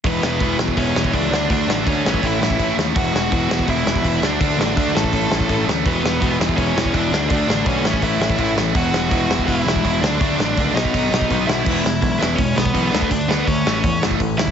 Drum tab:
CC |----------------|----------------|----------------|----------------|
HH |o---o---o---o---|o---o---o---o---|o---o---o---o---|o---o---o---o---|
SD |--o---o---o---o-|--o---o---o---o-|--o---o---o---o-|--o---o---o---o-|
BD |o---o--oo--oo---|o---o--oo--oo---|o---o--oo--oo---|o---o--oo--oo---|

CC |----------------|----------------|----------------|----------------|
HH |o---o---o---o---|o---o---o---o---|o---o---o---o---|o---o---o---o---|
SD |--o---o---o---o-|--o---o---o---o-|--o---o---o---o-|--o---o---o---o-|
BD |o---o--oo--oo---|o---o--oo--oo---|o---o--oo--oo---|o---o--oo--oo---|

CC |x---------------|----------------|
HH |----o---o---o---|o---o---o---o---|
SD |--o---o---o---o-|--o---o---o---o-|
BD |o---o---o--oo--o|o---o---o--oo--o|